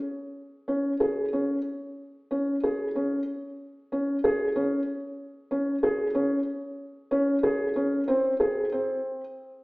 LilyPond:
\new Staff \with { instrumentName = "Felt piano" } { \time 5/8 \key aes \mixolydian \tempo 4 = 93 r4 des'8 aes'8 des'8 | r4 des'8 aes'8 des'8 | r4 des'8 aes'8 des'8 | r4 des'8 aes'8 des'8 |
r4 des'8 aes'8 des'8 | c'8 aes'8 c'4 r8 | }